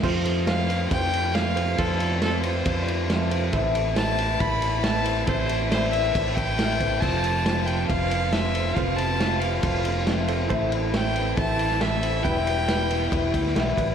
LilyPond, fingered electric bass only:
\new Staff \with { instrumentName = "Fingered electric bass" } { \clef bass \time 4/4 \key f \lydian \tempo 4 = 138 f,2 f,2 | f,2 f,2 | a,,2 a,,2 | a,,2 a,,2 |
f,,2 f,,2 | f,,2 f,,2 | a,,2 a,,2 | e,,2 e,,8 d,8 b,,8 a,,8 | }